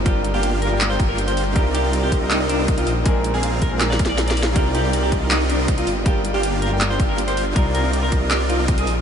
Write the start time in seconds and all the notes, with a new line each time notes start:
Already playing: G1
0.04 G3 D4 F4 G4 A#4, kick, closed hi-hat
0.08 G5
0.25 closed hi-hat
0.34 A#3 D4 F4 G4 F5
0.43 closed hi-hat
0.62 A#3 D4 F4 G4 A#4 F5, closed hi-hat
0.69 G3 D4 F4 A#4
0.73 G5
0.81 clap, closed hi-hat
0.90 C5
1.00 kick, closed hi-hat
1.09 A#4
1.18 closed hi-hat
1.28 C5, closed hi-hat
1.37 open hi-hat
1.54 C2 C3 G3 C4 D4 D#4 F4 G4 A#4 D5, kick, closed hi-hat
1.58 A#4
1.75 G4, closed hi-hat
1.84 C4 D#4 F4 A#4 D5
1.93 closed hi-hat
2.03 G4
2.12 C4 D#4 F4 A#4 D#5, kick, closed hi-hat
2.19 C3 G3 D4 D#4 F4 A#4
2.31 D#4, clap, closed hi-hat
2.40 C4 D#4 F4 A#4 D5
2.49 D4, closed hi-hat
2.59 C4 D#4 F4 A#4 D#5
2.68 kick, closed hi-hat
2.78 F4, closed hi-hat
2.87 A#1, open hi-hat
3.04 A#2 G#3 C4 D4 G#4, kick, closed hi-hat
3.08 A#4
3.24 closed hi-hat
3.34 C4 F4 G#4 A#4 F5
3.43 closed hi-hat
3.62 C4 F4 G#4 A#4 F5, kick, closed hi-hat
3.69 A#2 G#3 C4 D4
3.73 A#4
3.81 snare, clap, closed hi-hat
3.90 D5, snare
3.99 kick, closed hi-hat
4.06 D5, snare
4.18 snare, closed hi-hat
4.28 D5, snare, closed hi-hat
4.37 open hi-hat
4.43 snare
4.54 C2 C3 G3 C4 D4 D#4 F4 G4 A#4 D5, kick, closed hi-hat
4.58 A#4
4.75 G4, closed hi-hat
4.84 C4 D#4 F4 A#4 D5
4.93 closed hi-hat
5.03 G4
5.12 C4 D#4 F4 A#4 D#5, kick, closed hi-hat
5.20 C3 G3 D4 D#4 F4
5.24 A#4
5.31 D#4, clap, closed hi-hat
5.40 C4 D#4 F4 A#4 D5
5.49 D4, closed hi-hat
5.59 C4 D#4 F4 A#4 D#5
5.68 kick, closed hi-hat
5.78 F4, closed hi-hat
5.87 G1, open hi-hat
6.04 G3 D4 F4 G4 A#4 G5, kick, closed hi-hat
6.25 closed hi-hat
6.34 A#3 D4 F4 G4 F5
6.43 closed hi-hat
6.62 A#3 D4 F4 G4 A#4 F5, closed hi-hat
6.69 G3 D4 F4 A#4
6.73 G5
6.81 clap, closed hi-hat
6.90 C5
7.00 kick, closed hi-hat
7.09 A#4
7.18 closed hi-hat
7.28 C5, closed hi-hat
7.37 open hi-hat
7.54 C2 C3 G3 C4 D4 D#4 F4 A#4 D5, kick, closed hi-hat
7.75 A#4, closed hi-hat
7.84 C4 D#4 F4 A#4 D5
7.93 closed hi-hat
8.03 A#4
8.12 C4 D#4 F4 A#4 D#5, kick, closed hi-hat
8.20 C3 G3 D4 D#4 F4
8.24 A#4
8.31 G4, clap, closed hi-hat
8.40 C4 D#4 F4 A#4 D5
8.50 F4, closed hi-hat
8.59 C4 D#4 F4 A#4 D#5
8.68 kick, closed hi-hat
8.78 G#4, closed hi-hat
8.87 A#1, open hi-hat